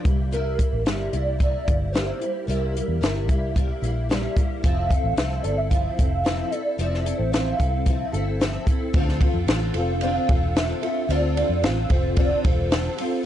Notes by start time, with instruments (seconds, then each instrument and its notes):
0.04 fingered electric bass C2, steel-string acoustic guitar G3 A#3 E4, kick, closed hi-hat
0.31 steel-string acoustic guitar C3 G3 A#3 E4, soft synth lead A#4, closed hi-hat
0.58 steel-string acoustic guitar G3 A#3 E4, kick, closed hi-hat
0.73 fingered electric bass A1
0.85 fingered electric bass G1, steel-string acoustic guitar C3 G3 A#3 E4, snare, closed hi-hat
1.12 fingered electric bass C2, steel-string acoustic guitar G3 A#3 E4, soft synth lead D5, closed hi-hat
1.39 steel-string acoustic guitar C3 G3 A#3 E4, kick, closed hi-hat
1.65 fingered electric bass G1, steel-string acoustic guitar G3 A#3 E4, kick, closed hi-hat
1.92 steel-string acoustic guitar C3 G3 A#3 E4, soft synth lead C5, snare, closed hi-hat
2.00 soft synth lead A#4
2.06 soft synth lead C5
2.20 steel-string acoustic guitar G3 A#3 E4, closed hi-hat
2.46 fingered electric bass C2, steel-string acoustic guitar C3 G3 A#3 E4, soft synth lead A#4, closed hi-hat
2.74 steel-string acoustic guitar G3 A#3 E4, closed hi-hat
2.88 fingered electric bass E2
3.01 fingered electric bass G1, steel-string acoustic guitar C3 G3 A#3 E4, snare, closed hi-hat
3.27 fingered electric bass C2, steel-string acoustic guitar G3 A#3 E4, kick, closed hi-hat
3.55 steel-string acoustic guitar C3 G3 A#3 E4, kick, closed hi-hat
3.82 fingered electric bass A#1, steel-string acoustic guitar G3 A#3 E4, closed hi-hat
4.09 steel-string acoustic guitar C3 G3 A#3 E4, snare, closed hi-hat
4.36 steel-string acoustic guitar G3 A#3 E4, kick, closed hi-hat
4.63 fingered electric bass F1, steel-string acoustic guitar F3 C4 E4 A4, soft synth lead F5, kick, closed hi-hat
4.89 steel-string acoustic guitar C4 E4 A4, kick, closed hi-hat
5.04 fingered electric bass A1
5.16 fingered electric bass C2, steel-string acoustic guitar F3 C4 E4 A4, snare, closed hi-hat
5.43 fingered electric bass G1, steel-string acoustic guitar C4 E4 A4, soft synth lead D5, closed hi-hat
5.57 soft synth lead E5
5.69 steel-string acoustic guitar F3 C4 E4 A4, soft synth lead F5, kick, closed hi-hat
5.97 fingered electric bass F1, steel-string acoustic guitar C4 E4 A4, kick, closed hi-hat
6.24 steel-string acoustic guitar F3 C4 E4 A4, snare, closed hi-hat
6.50 steel-string acoustic guitar E4 A4, soft synth lead D5, closed hi-hat
6.55 steel-string acoustic guitar C4
6.78 fingered electric bass F1, steel-string acoustic guitar F3 C4 E4 A4, closed hi-hat
6.94 snare
7.05 steel-string acoustic guitar C4 E4 A4, closed hi-hat
7.17 fingered electric bass A1, soft synth lead C5
7.31 steel-string acoustic guitar F3 C4 E4 A4, soft synth lead F5, snare, closed hi-hat
7.58 fingered electric bass C2, steel-string acoustic guitar C4 E4 A4, kick, closed hi-hat
7.86 steel-string acoustic guitar F3 C4 E4 A4, kick, closed hi-hat
8.12 fingered electric bass G1, steel-string acoustic guitar C4 E4 A4, closed hi-hat
8.40 steel-string acoustic guitar F3 C4 E4 A4, snare, closed hi-hat
8.66 steel-string acoustic guitar C4 E4 A4, kick, closed hi-hat
8.93 fingered electric bass D2, steel-string acoustic guitar D3 C4 F4 A4, kick, ride
9.08 snare
9.20 steel-string acoustic guitar C4 F4 A4, kick, ride
9.34 fingered electric bass F2
9.46 fingered electric bass A1, steel-string acoustic guitar D3 C4 F4 A4, snare, ride
9.74 fingered electric bass F1, steel-string acoustic guitar C4 F4 A4, soft synth lead F5, ride
10.01 steel-string acoustic guitar D3 C4 F4 A4, ride
10.28 fingered electric bass E1, steel-string acoustic guitar C4 F4 A4, kick, ride
10.55 steel-string acoustic guitar D3 C4 F4 A4, soft synth lead E5, snare, ride
10.82 steel-string acoustic guitar C4 F4 A4, ride
11.09 fingered electric bass D2, steel-string acoustic guitar D3 C4 F4 A4, soft synth lead D5, ride
11.35 steel-string acoustic guitar C4 F4 A4, ride
11.49 fingered electric bass F2
11.62 fingered electric bass A1, steel-string acoustic guitar D3 C4 F4 A4, soft synth lead F5, snare, ride
11.89 fingered electric bass F1, steel-string acoustic guitar C4 F4 A4, soft synth lead C5, kick, ride
12.16 steel-string acoustic guitar D3 C4 F4 A4, soft synth lead D5, kick, ride
12.43 fingered electric bass E1, steel-string acoustic guitar C4 F4 A4, soft synth lead C5, kick, ride
12.70 steel-string acoustic guitar D3 C4 F4 A4, snare, ride
12.97 steel-string acoustic guitar C4 F4 A4, open hi-hat, ride